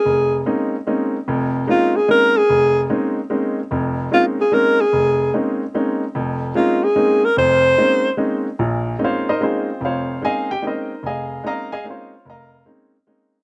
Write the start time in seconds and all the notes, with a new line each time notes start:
Already playing: G#4
0.05 F1
0.46 G#3 A#3 C4 C#4 D#4
0.87 G#3 A#3 C4 C#4 D#4
1.28 F1 F2
1.67 G#3 A#3 C4 C#4 D#4 F4
1.96 G#4
2.08 G#3 A#3 C4 C#4 D#4 A#4
2.37 G#4
2.49 F1
2.89 G#3 A#3 C4 C#4 D#4
3.30 G#3 A#3 C4 C#4 D#4
3.71 F1 F2
4.11 G#3 A#3 C4 C#4 D#4 F4
4.41 G#4
4.52 G#3 A#3 C4 C#4 D#4 A#4
4.81 G#4
4.93 F1
5.34 G#3 A#3 C4 C#4 D#4
5.74 G#3 A#3 C4 C#4 D#4
6.15 F1 F2
6.55 G#3 A#3 C4 C#4 D#4 F4
6.84 G#4
6.95 G#3 A#3 C4 C#4 D#4
7.25 A#4
7.37 F1 F2 C5
7.78 G#3 A#3 C4 C#4 D#4
8.17 G#3 A#3 C4 C#4 D#4
8.59 A#1 A#2
8.99 G#3 A#3 C4 C#4 D#4
9.04 F4 C5 C#5 F5
9.29 D#4 A#4 C5 D#5
9.40 G#3 A#3 C4 C#4 D#4 F4 G#4 C5
9.81 F1 F2
9.85 F4 C5 C#5 F5
10.22 G#3 A#3 C4 C#4 D#4 G#4 D#5 F5 G#5
10.51 G4 G5
10.62 G#3 A#3 C4 C#4 D#4
10.67 D#4 A#4 C5 D#5
11.03 F1 G#4 D#5 F5 G#5
11.43 G#3 A#3 C4 C#4 D#4 A#4 D#5 A#5
11.48 F5
11.72 G#4 D#5 F5 G#5
11.84 G#3 A#3 C4 C#4 D#4
11.90 F4 C5 C#5 F5
12.25 F1
12.30 A#4 D#5 F5 A#5
12.66 G#3 A#3 C4 C#4 D#4
13.07 G#3 A#3 C4 C#4 D#4